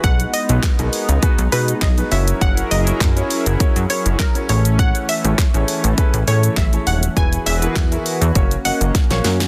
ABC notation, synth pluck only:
X:1
M:4/4
L:1/16
Q:1/4=101
K:F#mix
V:1 name="Synth pluck"
f2 d4 z4 B2 d z e z | f2 d4 z4 c2 A z c z | f2 e4 z4 c2 e z f z | g2 e4 z4 f2 z4 |]